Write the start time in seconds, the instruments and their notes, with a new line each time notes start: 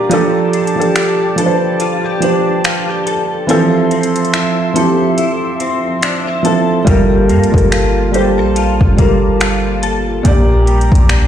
Already playing: clean electric guitar A#2 G3 D4 F4, felt piano A#2 A#3 G4 D5, analog synth pad G4 D5
0.09 felt piano F3 D4 G4, clean electric guitar F3, analog synth pad A5, closed hi-hat
0.13 felt piano A4
0.53 clean electric guitar D4, closed hi-hat
0.67 closed hi-hat
0.76 felt piano F3 D4 G4
0.80 felt piano A4, closed hi-hat
0.96 clean electric guitar G4, finger snap, closed hi-hat
1.36 felt piano F3 D4 G4, clean electric guitar A4, closed hi-hat
1.40 felt piano B4
1.46 felt piano C5
1.80 clean electric guitar F4, closed hi-hat
2.05 clean electric guitar G4
2.20 felt piano F3 D4 G4 C5, clean electric guitar D4, closed hi-hat
2.64 clean electric guitar F4, finger snap, closed hi-hat
2.89 clean electric guitar G4
3.06 clean electric guitar A4, closed hi-hat
3.47 felt piano E3 C4 E4, clean electric guitar F3, analog synth pad F3 E5 C6, closed hi-hat
3.51 felt piano F3 A4
3.91 clean electric guitar C4, closed hi-hat
4.03 closed hi-hat
4.16 closed hi-hat
4.25 closed hi-hat
4.33 clean electric guitar E4, finger snap, closed hi-hat
4.74 felt piano F3 C4 E4 G4, clean electric guitar A4, closed hi-hat
5.18 clean electric guitar E4, closed hi-hat
5.60 clean electric guitar C4, closed hi-hat
6.02 clean electric guitar D4, finger snap, closed hi-hat
6.27 clean electric guitar E4
6.43 felt piano F3 C4 E4 A4, clean electric guitar A4, closed hi-hat
6.85 808-style bass G1, felt piano G3 F4 A4, clean electric guitar G3, analog synth pad A#3 F4 A5, kick, closed hi-hat
6.89 felt piano A#4
7.29 808-style bass G2, clean electric guitar A#3, closed hi-hat
7.44 closed hi-hat
7.51 808-style bass G1, felt piano G3 F4 A4 A#4, kick
7.58 closed hi-hat
7.71 clean electric guitar F4, finger snap, closed hi-hat
8.12 felt piano G3 F4 A4 C5, clean electric guitar G4, closed hi-hat
8.38 808-style bass A#1, clean electric guitar A4
8.56 clean electric guitar F4, closed hi-hat
8.81 808-style bass G1, kick
8.96 felt piano G3 F4 A4 A#4, clean electric guitar A#3, kick, closed hi-hat
9.40 clean electric guitar F4, finger snap, closed hi-hat
9.82 clean electric guitar A4, closed hi-hat
10.23 808-style bass A#1, felt piano A#2 A#3 G4, clean electric guitar A#2, analog synth pad G4 D5 A#5, kick, closed hi-hat
10.27 felt piano D5
10.67 clean electric guitar G3, closed hi-hat
10.81 closed hi-hat
10.92 808-style bass A#1, kick, closed hi-hat
11.09 clean electric guitar D4, finger snap, closed hi-hat